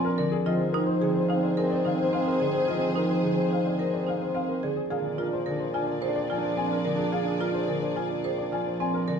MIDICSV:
0, 0, Header, 1, 7, 480
1, 0, Start_track
1, 0, Tempo, 555556
1, 403, Time_signature, 4, 2, 24, 8
1, 7945, End_track
2, 0, Start_track
2, 0, Title_t, "Grand piano"
2, 0, Program_c, 0, 0
2, 39, Note_on_c, 0, 70, 88
2, 160, Note_on_c, 0, 74, 81
2, 198, Note_off_c, 0, 70, 0
2, 274, Note_on_c, 0, 68, 100
2, 318, Note_off_c, 0, 74, 0
2, 396, Note_on_c, 0, 75, 93
2, 436, Note_off_c, 0, 68, 0
2, 507, Note_on_c, 0, 68, 75
2, 557, Note_off_c, 0, 75, 0
2, 626, Note_on_c, 0, 70, 77
2, 674, Note_off_c, 0, 68, 0
2, 747, Note_on_c, 0, 72, 89
2, 793, Note_off_c, 0, 70, 0
2, 870, Note_on_c, 0, 68, 76
2, 914, Note_off_c, 0, 72, 0
2, 997, Note_on_c, 0, 72, 83
2, 1035, Note_off_c, 0, 68, 0
2, 1110, Note_on_c, 0, 77, 84
2, 1157, Note_off_c, 0, 72, 0
2, 1233, Note_on_c, 0, 74, 69
2, 1275, Note_off_c, 0, 77, 0
2, 1357, Note_on_c, 0, 68, 78
2, 1396, Note_off_c, 0, 74, 0
2, 1478, Note_on_c, 0, 74, 84
2, 1517, Note_off_c, 0, 68, 0
2, 1603, Note_on_c, 0, 77, 70
2, 1637, Note_off_c, 0, 74, 0
2, 1725, Note_on_c, 0, 72, 70
2, 1760, Note_off_c, 0, 77, 0
2, 1841, Note_on_c, 0, 77, 86
2, 1880, Note_off_c, 0, 72, 0
2, 1960, Note_on_c, 0, 70, 68
2, 1999, Note_off_c, 0, 77, 0
2, 2084, Note_on_c, 0, 74, 66
2, 2118, Note_off_c, 0, 70, 0
2, 2201, Note_on_c, 0, 68, 78
2, 2240, Note_off_c, 0, 74, 0
2, 2321, Note_on_c, 0, 75, 78
2, 2359, Note_off_c, 0, 68, 0
2, 2447, Note_on_c, 0, 68, 64
2, 2479, Note_off_c, 0, 75, 0
2, 2566, Note_on_c, 0, 70, 68
2, 2601, Note_off_c, 0, 68, 0
2, 2685, Note_on_c, 0, 72, 72
2, 2720, Note_off_c, 0, 70, 0
2, 2806, Note_on_c, 0, 68, 64
2, 2840, Note_off_c, 0, 72, 0
2, 2934, Note_on_c, 0, 72, 63
2, 2961, Note_off_c, 0, 68, 0
2, 3047, Note_on_c, 0, 77, 72
2, 3083, Note_off_c, 0, 72, 0
2, 3167, Note_on_c, 0, 74, 63
2, 3201, Note_off_c, 0, 77, 0
2, 3285, Note_on_c, 0, 68, 62
2, 3321, Note_off_c, 0, 74, 0
2, 3404, Note_on_c, 0, 74, 74
2, 3440, Note_off_c, 0, 68, 0
2, 3525, Note_on_c, 0, 77, 65
2, 3560, Note_off_c, 0, 74, 0
2, 3645, Note_on_c, 0, 72, 60
2, 3680, Note_off_c, 0, 77, 0
2, 3755, Note_on_c, 0, 77, 80
2, 3800, Note_off_c, 0, 72, 0
2, 3880, Note_on_c, 0, 70, 64
2, 3917, Note_off_c, 0, 77, 0
2, 4004, Note_on_c, 0, 74, 64
2, 4038, Note_off_c, 0, 70, 0
2, 4114, Note_on_c, 0, 68, 74
2, 4160, Note_off_c, 0, 74, 0
2, 4237, Note_on_c, 0, 77, 74
2, 4276, Note_off_c, 0, 68, 0
2, 4356, Note_on_c, 0, 68, 66
2, 4397, Note_off_c, 0, 77, 0
2, 4476, Note_on_c, 0, 70, 68
2, 4517, Note_off_c, 0, 68, 0
2, 4604, Note_on_c, 0, 72, 83
2, 4637, Note_off_c, 0, 70, 0
2, 4720, Note_on_c, 0, 68, 70
2, 4760, Note_off_c, 0, 72, 0
2, 4837, Note_on_c, 0, 72, 69
2, 4878, Note_off_c, 0, 68, 0
2, 4957, Note_on_c, 0, 80, 85
2, 4997, Note_off_c, 0, 72, 0
2, 5073, Note_on_c, 0, 74, 68
2, 5117, Note_off_c, 0, 80, 0
2, 5201, Note_on_c, 0, 68, 66
2, 5236, Note_off_c, 0, 74, 0
2, 5320, Note_on_c, 0, 74, 88
2, 5359, Note_off_c, 0, 68, 0
2, 5450, Note_on_c, 0, 80, 73
2, 5479, Note_off_c, 0, 74, 0
2, 5561, Note_on_c, 0, 72, 67
2, 5602, Note_off_c, 0, 80, 0
2, 5678, Note_on_c, 0, 80, 86
2, 5719, Note_off_c, 0, 72, 0
2, 5800, Note_on_c, 0, 70, 71
2, 5838, Note_off_c, 0, 80, 0
2, 5919, Note_on_c, 0, 74, 69
2, 5958, Note_off_c, 0, 70, 0
2, 6033, Note_on_c, 0, 68, 83
2, 6078, Note_off_c, 0, 74, 0
2, 6154, Note_on_c, 0, 77, 81
2, 6196, Note_off_c, 0, 68, 0
2, 6272, Note_on_c, 0, 68, 70
2, 6316, Note_off_c, 0, 77, 0
2, 6394, Note_on_c, 0, 70, 73
2, 6435, Note_off_c, 0, 68, 0
2, 6514, Note_on_c, 0, 72, 85
2, 6556, Note_off_c, 0, 70, 0
2, 6635, Note_on_c, 0, 68, 76
2, 6676, Note_off_c, 0, 72, 0
2, 6753, Note_on_c, 0, 72, 74
2, 6797, Note_off_c, 0, 68, 0
2, 6874, Note_on_c, 0, 80, 74
2, 6916, Note_off_c, 0, 72, 0
2, 7000, Note_on_c, 0, 74, 70
2, 7036, Note_off_c, 0, 80, 0
2, 7119, Note_on_c, 0, 68, 71
2, 7158, Note_off_c, 0, 74, 0
2, 7242, Note_on_c, 0, 74, 81
2, 7278, Note_off_c, 0, 68, 0
2, 7368, Note_on_c, 0, 80, 77
2, 7399, Note_off_c, 0, 74, 0
2, 7490, Note_on_c, 0, 72, 70
2, 7521, Note_off_c, 0, 80, 0
2, 7608, Note_on_c, 0, 80, 89
2, 7642, Note_off_c, 0, 72, 0
2, 7723, Note_on_c, 0, 70, 74
2, 7761, Note_off_c, 0, 80, 0
2, 7846, Note_on_c, 0, 74, 67
2, 7879, Note_off_c, 0, 70, 0
2, 7945, Note_off_c, 0, 74, 0
2, 7945, End_track
3, 0, Start_track
3, 0, Title_t, "String section"
3, 0, Program_c, 1, 48
3, 0, Note_on_c, 1, 68, 60
3, 0, Note_on_c, 1, 74, 64
3, 250, Note_off_c, 1, 74, 0
3, 253, Note_off_c, 1, 68, 0
3, 406, Note_on_c, 1, 68, 82
3, 406, Note_on_c, 1, 72, 76
3, 4090, Note_off_c, 1, 68, 0
3, 4090, Note_off_c, 1, 72, 0
3, 4239, Note_on_c, 1, 74, 67
3, 4240, Note_on_c, 1, 68, 69
3, 7927, Note_off_c, 1, 68, 0
3, 7927, Note_off_c, 1, 74, 0
3, 7945, End_track
4, 0, Start_track
4, 0, Title_t, "Marimba"
4, 0, Program_c, 2, 12
4, 155, Note_on_c, 2, 70, 94
4, 317, Note_off_c, 2, 70, 0
4, 401, Note_on_c, 2, 65, 78
4, 559, Note_off_c, 2, 65, 0
4, 641, Note_on_c, 2, 63, 104
4, 799, Note_off_c, 2, 63, 0
4, 878, Note_on_c, 2, 68, 78
4, 1037, Note_off_c, 2, 68, 0
4, 1121, Note_on_c, 2, 63, 73
4, 1279, Note_off_c, 2, 63, 0
4, 1358, Note_on_c, 2, 70, 88
4, 1518, Note_off_c, 2, 70, 0
4, 1598, Note_on_c, 2, 63, 66
4, 1758, Note_off_c, 2, 63, 0
4, 1839, Note_on_c, 2, 60, 71
4, 1998, Note_off_c, 2, 60, 0
4, 2073, Note_on_c, 2, 68, 77
4, 2236, Note_off_c, 2, 68, 0
4, 2314, Note_on_c, 2, 65, 64
4, 2476, Note_off_c, 2, 65, 0
4, 2555, Note_on_c, 2, 63, 83
4, 2717, Note_off_c, 2, 63, 0
4, 2798, Note_on_c, 2, 68, 61
4, 2958, Note_off_c, 2, 68, 0
4, 3030, Note_on_c, 2, 63, 61
4, 3195, Note_off_c, 2, 63, 0
4, 3275, Note_on_c, 2, 70, 74
4, 3437, Note_off_c, 2, 70, 0
4, 3513, Note_on_c, 2, 63, 61
4, 3676, Note_off_c, 2, 63, 0
4, 3756, Note_on_c, 2, 60, 61
4, 3917, Note_off_c, 2, 60, 0
4, 4002, Note_on_c, 2, 68, 72
4, 4159, Note_off_c, 2, 68, 0
4, 4238, Note_on_c, 2, 68, 64
4, 4398, Note_off_c, 2, 68, 0
4, 4478, Note_on_c, 2, 65, 80
4, 4638, Note_off_c, 2, 65, 0
4, 4717, Note_on_c, 2, 70, 73
4, 4877, Note_off_c, 2, 70, 0
4, 4962, Note_on_c, 2, 65, 64
4, 5119, Note_off_c, 2, 65, 0
4, 5199, Note_on_c, 2, 72, 80
4, 5358, Note_off_c, 2, 72, 0
4, 5443, Note_on_c, 2, 65, 68
4, 5599, Note_off_c, 2, 65, 0
4, 5679, Note_on_c, 2, 60, 63
4, 5838, Note_off_c, 2, 60, 0
4, 5915, Note_on_c, 2, 70, 79
4, 6077, Note_off_c, 2, 70, 0
4, 6156, Note_on_c, 2, 68, 64
4, 6317, Note_off_c, 2, 68, 0
4, 6398, Note_on_c, 2, 65, 86
4, 6558, Note_off_c, 2, 65, 0
4, 6638, Note_on_c, 2, 70, 68
4, 6798, Note_off_c, 2, 70, 0
4, 6884, Note_on_c, 2, 65, 66
4, 7040, Note_off_c, 2, 65, 0
4, 7122, Note_on_c, 2, 72, 86
4, 7279, Note_off_c, 2, 72, 0
4, 7363, Note_on_c, 2, 65, 64
4, 7519, Note_off_c, 2, 65, 0
4, 7605, Note_on_c, 2, 60, 73
4, 7760, Note_off_c, 2, 60, 0
4, 7843, Note_on_c, 2, 70, 85
4, 7945, Note_off_c, 2, 70, 0
4, 7945, End_track
5, 0, Start_track
5, 0, Title_t, "French horn"
5, 0, Program_c, 3, 60
5, 35, Note_on_c, 3, 62, 45
5, 209, Note_off_c, 3, 62, 0
5, 402, Note_on_c, 3, 60, 50
5, 576, Note_off_c, 3, 60, 0
5, 651, Note_on_c, 3, 60, 54
5, 825, Note_off_c, 3, 60, 0
5, 900, Note_on_c, 3, 60, 66
5, 1074, Note_off_c, 3, 60, 0
5, 1146, Note_on_c, 3, 60, 75
5, 1320, Note_off_c, 3, 60, 0
5, 1392, Note_on_c, 3, 60, 77
5, 1567, Note_off_c, 3, 60, 0
5, 1647, Note_on_c, 3, 60, 75
5, 1820, Note_off_c, 3, 60, 0
5, 1887, Note_on_c, 3, 60, 75
5, 2062, Note_off_c, 3, 60, 0
5, 2143, Note_on_c, 3, 60, 78
5, 2316, Note_off_c, 3, 60, 0
5, 2389, Note_on_c, 3, 60, 76
5, 2562, Note_off_c, 3, 60, 0
5, 2636, Note_on_c, 3, 60, 69
5, 2809, Note_off_c, 3, 60, 0
5, 2885, Note_on_c, 3, 60, 61
5, 3058, Note_off_c, 3, 60, 0
5, 3129, Note_on_c, 3, 60, 62
5, 3304, Note_off_c, 3, 60, 0
5, 3384, Note_on_c, 3, 60, 49
5, 3556, Note_off_c, 3, 60, 0
5, 3624, Note_on_c, 3, 60, 44
5, 3799, Note_off_c, 3, 60, 0
5, 3869, Note_on_c, 3, 60, 35
5, 4045, Note_off_c, 3, 60, 0
5, 4234, Note_on_c, 3, 62, 40
5, 4411, Note_off_c, 3, 62, 0
5, 4489, Note_on_c, 3, 62, 48
5, 4663, Note_off_c, 3, 62, 0
5, 4738, Note_on_c, 3, 62, 56
5, 4912, Note_off_c, 3, 62, 0
5, 4990, Note_on_c, 3, 62, 64
5, 5163, Note_off_c, 3, 62, 0
5, 5235, Note_on_c, 3, 62, 70
5, 5409, Note_off_c, 3, 62, 0
5, 5488, Note_on_c, 3, 62, 76
5, 5660, Note_off_c, 3, 62, 0
5, 5731, Note_on_c, 3, 62, 75
5, 5905, Note_off_c, 3, 62, 0
5, 5985, Note_on_c, 3, 62, 82
5, 6157, Note_off_c, 3, 62, 0
5, 6231, Note_on_c, 3, 62, 80
5, 6403, Note_off_c, 3, 62, 0
5, 6480, Note_on_c, 3, 62, 72
5, 6652, Note_off_c, 3, 62, 0
5, 6727, Note_on_c, 3, 62, 70
5, 6899, Note_off_c, 3, 62, 0
5, 6975, Note_on_c, 3, 62, 64
5, 7147, Note_off_c, 3, 62, 0
5, 7230, Note_on_c, 3, 62, 63
5, 7400, Note_off_c, 3, 62, 0
5, 7469, Note_on_c, 3, 62, 48
5, 7642, Note_off_c, 3, 62, 0
5, 7714, Note_on_c, 3, 62, 39
5, 7888, Note_off_c, 3, 62, 0
5, 7945, End_track
6, 0, Start_track
6, 0, Title_t, "Harp"
6, 0, Program_c, 4, 46
6, 0, Note_on_c, 4, 50, 74
6, 0, Note_on_c, 4, 53, 75
6, 0, Note_on_c, 4, 56, 87
6, 0, Note_on_c, 4, 60, 75
6, 150, Note_off_c, 4, 50, 0
6, 160, Note_on_c, 4, 50, 82
6, 389, Note_off_c, 4, 53, 0
6, 399, Note_on_c, 4, 53, 95
6, 421, Note_off_c, 4, 50, 0
6, 882, Note_on_c, 4, 50, 75
6, 1360, Note_on_c, 4, 58, 70
6, 1601, Note_on_c, 4, 51, 68
6, 1857, Note_off_c, 4, 56, 0
6, 2070, Note_off_c, 4, 50, 0
6, 2081, Note_on_c, 4, 50, 68
6, 2310, Note_off_c, 4, 53, 0
6, 2320, Note_on_c, 4, 53, 84
6, 2793, Note_off_c, 4, 50, 0
6, 2803, Note_on_c, 4, 50, 61
6, 2815, Note_off_c, 4, 60, 0
6, 3272, Note_off_c, 4, 58, 0
6, 3282, Note_on_c, 4, 58, 59
6, 3509, Note_off_c, 4, 51, 0
6, 3519, Note_on_c, 4, 51, 58
6, 3993, Note_off_c, 4, 50, 0
6, 4003, Note_on_c, 4, 50, 60
6, 4242, Note_on_c, 4, 56, 79
6, 4261, Note_off_c, 4, 51, 0
6, 4262, Note_off_c, 4, 50, 0
6, 4717, Note_on_c, 4, 50, 69
6, 5199, Note_on_c, 4, 60, 64
6, 5433, Note_off_c, 4, 53, 0
6, 5443, Note_on_c, 4, 53, 67
6, 5911, Note_off_c, 4, 50, 0
6, 5921, Note_on_c, 4, 50, 67
6, 6150, Note_off_c, 4, 56, 0
6, 6160, Note_on_c, 4, 56, 80
6, 6635, Note_off_c, 4, 50, 0
6, 6645, Note_on_c, 4, 50, 64
6, 6651, Note_off_c, 4, 58, 0
6, 7114, Note_off_c, 4, 60, 0
6, 7125, Note_on_c, 4, 60, 64
6, 7353, Note_off_c, 4, 53, 0
6, 7363, Note_on_c, 4, 53, 65
6, 7836, Note_off_c, 4, 50, 0
6, 7846, Note_on_c, 4, 50, 70
6, 7945, Note_off_c, 4, 50, 0
6, 7945, Note_off_c, 4, 53, 0
6, 7945, Note_off_c, 4, 56, 0
6, 7945, Note_off_c, 4, 60, 0
6, 7945, End_track
7, 0, Start_track
7, 0, Title_t, "Bassoon"
7, 0, Program_c, 5, 70
7, 0, Note_on_c, 5, 46, 68
7, 276, Note_off_c, 5, 46, 0
7, 402, Note_on_c, 5, 44, 86
7, 4112, Note_off_c, 5, 44, 0
7, 4240, Note_on_c, 5, 46, 74
7, 7945, Note_off_c, 5, 46, 0
7, 7945, End_track
0, 0, End_of_file